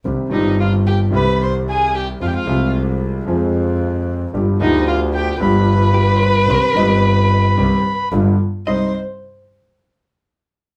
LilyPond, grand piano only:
\new Staff \with { instrumentName = "Grand piano" } { \clef bass \time 4/4 \key c \minor \tempo 4 = 111 <c, c ees g c' g'>8 <g,, g, ees g c' g'>4. <c, c ees g c' g'>2 | <f, f aes c' aes'>8 <c, c f aes c' aes'>4. <f, f aes c' aes'>2 | <g,, g, f b d' g'>8 <d, d f b d' g'>4. <g,, g, f b d' g'>2 | <c, c ees g c' g'>8 <g,, g, ees g c' g'>4. <c, c ees g c' g'>8 r8 <g,, g, d g b f'>8 r8 |
<c, g c' ees'>8 r2. r8 | }